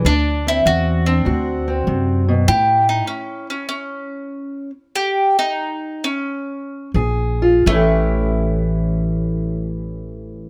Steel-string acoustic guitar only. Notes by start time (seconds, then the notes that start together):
0.06 D3 D4
0.47 C4
0.66 D3
1.07 D4
1.25 D3 F#4
1.68 C4
1.87 C3
2.28 B2
2.48 A2 E4
6.95 A#2 G#4
7.42 F4
7.66 A2 E3 C#4
7.72 E4 G4